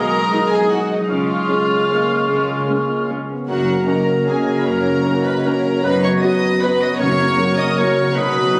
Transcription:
Already playing: double bass section B1, cello section B2, harp B2 D#4 F#4 D#5, bassoon G#3, french horn section G#3 D#4, violin section A#4 A#5, clarinet A#4, cor anglais D#5, flute section D#6
0.10 harp F#3
0.29 viola section G#3 D#4, harp G#4, flute section D#6
0.50 harp F#3, clarinet G#4, violin section G#4 G#5
0.70 viola section G#3 D#4, clarinet F#4, violin section F#4 F#5, harp D#5
0.90 harp F#3, clarinet D#4, violin section D#4 D#5
1.08 double bass section C#2, harp C#3, cello section C#3, bassoon G#3, french horn section G#3, clarinet F4, violin section F4 F5, cor anglais C#5, flute section F6
1.28 harp C#4
1.49 viola section G#3 C#4, french horn section G#3, harp G#4
1.70 harp C#4
1.88 viola section G#3 C#4, french horn section A#3, harp C#5
2.10 harp C#4
2.28 double bass section C#2, cello section C#3, harp C#3, french horn section G#3
2.48 harp G#3
2.68 viola section G#3 C#4, french horn section A#3, harp G#4
2.90 harp C#4
3.09 viola section G#3 C#4, harp C#5
3.29 french horn section B3, harp C#4
3.48 double bass section F#1, harp F#2, cello section F#2, bassoon F#3, french horn section A#3 C#4, violin section F#4 F#5, clarinet F#4, cor anglais A#4, flute section A#5
3.67 harp C#3
3.87 viola section A#3 C#4, harp F#4, violin section A#4 A#5, clarinet A#4, flute section D#5
4.08 harp C#3
4.28 viola section A#3 C#4, clarinet G#4, violin section G#4 G#5, harp C#5
4.47 harp C#3
4.60 violin section B5
4.64 double bass section F#1, cello section F#2, harp F#2, clarinet A#4, violin section A#4 A#5, flute section C#5
4.85 harp A#3
5.03 viola section A#3 C#4, harp F#4, flute section D#5
5.24 harp C#3, clarinet B4, violin section B4 B5
5.45 viola section A#3 C#4, clarinet A#4, violin section A#4 A#5, flute section C#5, harp C#5
5.64 harp C#3
5.83 double bass section F#1, harp F#2, cello section F#2, french horn section F#3 B3, bassoon F#3, clarinet B4, violin section B4 B5, cor anglais B4, flute section D#5
6.02 harp F#3, clarinet C#5, violin section C#5 C#6
6.21 viola section B3 F#4, harp F#4, flute section B4, clarinet D#5, violin section D#5 D#6
6.43 harp F#3
6.62 viola section B3 F#4, clarinet B4, violin section B4 B5, harp B4, flute section D#5
6.81 harp F#3, clarinet D#5, violin section D#5 D#6
6.99 double bass section F#1, cello section F#2, harp F#2, timpani F#2, french horn section A#3, cor anglais A#4, violin section C#5 C#6, clarinet C#5, flute section C#5
7.19 harp C#3
7.39 viola section A#3 F#4, harp F#4, flute section A#4
7.58 harp C#3, clarinet D#5, violin section D#5 D#6
7.77 viola section A#3 F#4, harp A#4, clarinet C#5, violin section C#5 C#6
7.97 harp C#3
8.14 double bass section B1, cello section B2, harp B2, french horn section F#3 D#4, bassoon F#3, clarinet B4, violin section B4 B5, cor anglais D#5
8.34 harp F#3
8.52 viola section B3 D#4, harp F#4, flute section B4

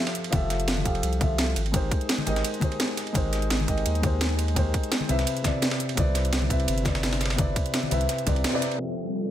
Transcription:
Already playing: grand piano F3 F4 G4 A4 E5 F5
0.07 snare, ride
0.15 closed hi-hat
0.24 ride
0.30 sub bass F1, grand piano F3 F4 G4 A4, kick, closed hi-hat, ride, high conga
0.35 grand piano E5
0.50 snare, closed hi-hat, ride
0.60 closed hi-hat
0.68 snare, closed hi-hat, ride
0.77 high conga
0.85 sub bass F1, grand piano F3 F4 G4 A4 F5, kick, closed hi-hat, ride
0.95 ride
1.03 sub bass C2, closed hi-hat, ride
1.13 closed hi-hat
1.20 grand piano F3 F4 G4 A4 E5, kick, closed hi-hat, ride, high conga
1.38 snare, closed hi-hat, ride
1.56 sub bass G#1, closed hi-hat, ride
1.66 ride
1.72 grand piano G#3 D#4 G4 A#4, kick, closed hi-hat, ride, high conga
1.76 grand piano C5
1.91 kick, closed hi-hat, ride
2.01 closed hi-hat
2.09 snare, closed hi-hat, ride
2.18 high conga
2.26 sub bass G#1, grand piano G#3 D#4 G4 A#4 D#5, closed hi-hat, ride, muted conga
2.36 snare, closed hi-hat
2.44 closed hi-hat, ride
2.54 closed hi-hat
2.60 grand piano G#3 D#4 G4 A#4, kick, closed hi-hat, ride, high conga
2.64 grand piano C5
2.72 ride
2.80 snare, closed hi-hat, ride
2.97 snare, closed hi-hat, ride
3.07 ride
3.13 sub bass G#1, grand piano G#3 D#4 G4 A#4, kick, closed hi-hat, ride, high conga
3.17 grand piano C5
3.33 snare, closed hi-hat, ride
3.42 closed hi-hat
3.50 snare, closed hi-hat, ride
3.60 high conga
3.67 sub bass G#1, grand piano G#3 D#4 G4 A#4 D#5, kick, closed hi-hat, ride
3.78 ride
3.86 sub bass D#2, closed hi-hat, ride
3.95 closed hi-hat
4.01 grand piano G#3 D#4 G4 A#4, kick, closed hi-hat, ride, high conga
4.06 grand piano C5
4.21 snare, closed hi-hat, ride
4.39 closed hi-hat, ride
4.48 ride
4.54 grand piano G#3 D#4 G4 A#4, kick, closed hi-hat, ride, high conga
4.59 grand piano C5
4.74 kick, closed hi-hat, ride
4.83 closed hi-hat
4.92 snare, closed hi-hat, ride
5.00 high conga
5.08 sub bass C2, grand piano C3 C4 E4 B4 E5, closed hi-hat, ride, muted conga
5.19 snare, closed hi-hat
5.27 closed hi-hat, ride
5.37 closed hi-hat
5.42 grand piano C3 C4 E4 B4, kick, snare, closed hi-hat, ride, high conga
5.47 grand piano D5
5.62 snare, closed hi-hat, ride
5.71 snare, ride
5.80 closed hi-hat
5.89 ride
5.95 sub bass C2, grand piano C3 C4 E4 B4, kick, closed hi-hat, ride, high conga
6.00 grand piano D5
6.15 snare, closed hi-hat, ride
6.25 closed hi-hat
6.33 snare, closed hi-hat, ride
6.42 high conga
6.49 sub bass C2, grand piano C3 C4 E4 B4 E5, kick, closed hi-hat, ride
6.60 ride
6.68 sub bass G1, closed hi-hat, ride
6.78 closed hi-hat
6.83 grand piano C3 C4 E4 B4, kick, snare, closed hi-hat, ride, high conga
6.88 grand piano D5
6.95 snare, ride
7.03 snare, closed hi-hat, ride
7.13 snare, ride
7.21 snare, closed hi-hat, ride
7.26 snare, ride
7.30 snare, ride
7.36 grand piano C3 C4 E4 B4, kick, closed hi-hat, ride, high conga
7.41 grand piano D5
7.56 kick, closed hi-hat, ride
7.66 closed hi-hat
7.74 snare, closed hi-hat, ride
7.83 high conga
7.90 sub bass C2, grand piano C3 C4 E4 B4 E5, closed hi-hat, ride, muted conga
8.01 closed hi-hat
8.09 snare, closed hi-hat, ride
8.18 closed hi-hat
8.26 sub bass C2, grand piano C3 C4 E4 B4 D5, kick, closed hi-hat, ride, muted conga, high conga
8.36 ride
8.44 snare, closed hi-hat, ride
8.53 grand piano C3 C4 E4 B4 D5
8.62 snare, closed hi-hat, ride
8.72 ride
8.78 grand piano F3 C4 G4 A4, analog synth pad G3 F4 A4 G5, downlifter

